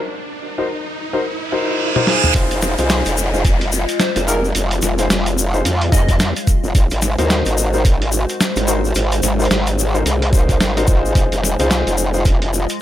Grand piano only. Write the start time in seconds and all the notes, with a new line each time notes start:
0.58 D#4 F#4 A#4 C5
1.13 D#4 F#4 A#4 C5
1.52 D#4 F#4 A#4 C5
1.96 D#4 F#4 A#4 C5
2.07 D#4 F4 G#4 C5
2.35 D#4 F4 G#4 C5
2.78 D#4 F4 G#4 C5
3.33 D#4 F4 G#4 C5
4.28 D#4 F4 G#4 A#4
4.99 D#4 F4 G#4 C5
5.54 D#4 F4 G#4 C5
5.92 D#4 F4 G#4 D#5
7.18 D#4 F#4 A#4 C5
7.74 D#4 F#4 A#4 C5
8.68 D#4 F#4 A#4 C5
9.39 D#4 F#4 A#4 C5
9.94 D#4 F#4 A#4 C5
10.33 D#4 F#4 A#4 C5
10.77 D#4 F#4 A#4 C5
10.88 F4 G#4
11.59 D#4 F4 G#4 C5
12.14 D#4 F4 G#4 C5